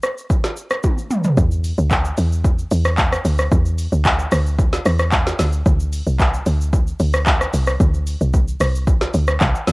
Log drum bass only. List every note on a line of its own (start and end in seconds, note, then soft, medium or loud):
1.37 1.73 E2 loud
1.78 2.13 D2 loud
2.18 2.65 E2 medium
2.71 3.18 E2 loud
3.25 3.48 D2 medium
3.52 3.87 E2 loud
3.92 4.27 D2 medium
4.32 4.79 D2 loud
4.86 5.32 E2 loud
5.39 5.63 D2 medium
5.66 6.02 D2 loud
6.07 6.41 C2 medium
6.46 6.93 D2 medium
7.00 7.47 D2 loud
7.54 7.77 C2 medium
7.80 8.16 D2 loud
8.21 8.56 C2 loud
8.60 9.07 C2 medium
9.14 9.38 D2 loud
9.41 9.53 C2 loud
9.68 9.72 D2 loud